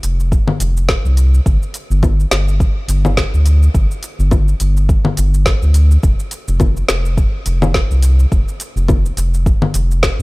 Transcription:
0.03 analog synth bass F1, closed hi-hat, shaker
0.20 shaker
0.32 kick, shaker
0.48 low conga
0.60 analog synth bass F1, closed hi-hat, shaker
0.77 shaker
0.89 kick, snare, shaker
1.05 analog synth bass C2, shaker
1.17 closed hi-hat, shaker
1.34 shaker
1.46 analog synth bass G1, kick, shaker
1.63 shaker
1.74 closed hi-hat, shaker
1.90 analog synth bass G1, shaker
2.03 kick, low conga, shaker
2.20 shaker
2.31 analog synth bass G1, snare, closed hi-hat, shaker
2.48 shaker
2.60 kick, shaker
2.88 analog synth bass G1, closed hi-hat, shaker
3.05 low conga, shaker
3.17 kick, snare, shaker
3.34 analog synth bass D2, shaker
3.46 closed hi-hat, shaker
3.63 shaker
3.75 analog synth bass G1, kick, shaker
3.91 shaker
4.03 closed hi-hat, shaker
4.19 analog synth bass G1, shaker
4.31 kick, low conga, shaker
4.48 shaker
4.60 analog synth bass G1, closed hi-hat, shaker
4.77 shaker
4.89 kick, shaker
5.05 low conga
5.17 analog synth bass G1, closed hi-hat, shaker
5.34 shaker
5.46 kick, snare, shaker
5.62 analog synth bass D2, shaker
5.74 closed hi-hat, shaker
5.91 shaker
6.03 analog synth bass F1, kick, shaker
6.20 shaker
6.31 closed hi-hat, shaker
6.48 analog synth bass F1, shaker
6.60 kick, low conga, shaker
6.77 shaker
6.88 analog synth bass F1, snare, closed hi-hat, shaker
7.05 shaker
7.17 kick, shaker
7.46 analog synth bass F1, closed hi-hat, shaker
7.62 low conga, shaker
7.74 kick, snare, shaker
7.90 analog synth bass C2, shaker
8.02 closed hi-hat, shaker
8.20 shaker
8.32 analog synth bass F1, kick, shaker
8.48 shaker
8.60 closed hi-hat, shaker
8.76 analog synth bass F1, shaker
8.88 kick, low conga, shaker
9.06 shaker
9.17 analog synth bass F1, closed hi-hat, shaker
9.34 shaker
9.46 kick, shaker
9.62 low conga
9.74 analog synth bass F1, closed hi-hat, shaker
9.91 shaker
10.03 kick, snare, shaker

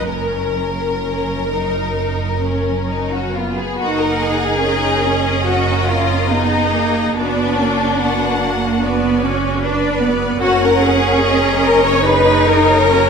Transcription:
0.08 double bass section F#1, cello section F#2, violin section C#4 A#4, viola section A#4
1.05 violin section C#4
1.51 violin section D#4
2.44 violin section C#4
2.89 violin section C#4 D#4
3.12 violin section F#4
3.34 violin section B3 F4
3.58 violin section G#4
3.78 double bass section F#1, viola section A#3 A#4, cello section D#4, violin section F#4 F#5
3.99 violin section A#4
4.20 violin section G#4
4.65 cello section C#4, viola section D#4, violin section D#5
5.07 viola section C#4
5.46 violin section F#4, viola section A#4
5.89 violin section F4
6.30 cello section B3, viola section B3 G#4, violin section D#4
6.72 viola section A#3, cello section A#3
7.14 double bass section F#1, cello section B3, viola section B3 F#4, violin section D4 D5
7.58 viola section A#3, cello section C#4
7.99 cello section B3, viola section F#4, violin section F#5
8.41 cello section A#3
8.82 viola section B3 F#4, cello section B3, violin section D5
9.22 viola section C#4, cello section C#4
9.62 cello section D4, viola section D4 B4, violin section D5
10.01 viola section B3, cello section B3
10.40 double bass section F#1, viola section C#4 A#4, cello section C#4, violin section F#4 F#5
10.63 violin section A#4
10.82 violin section G#4
11.27 violin section D#5
11.64 violin section A#4
11.85 violin section C#5
12.05 viola section D#4 G#4, cello section D#4, violin section B4 C#5
12.46 violin section A#4
12.88 viola section C#4 F#4, cello section C#4

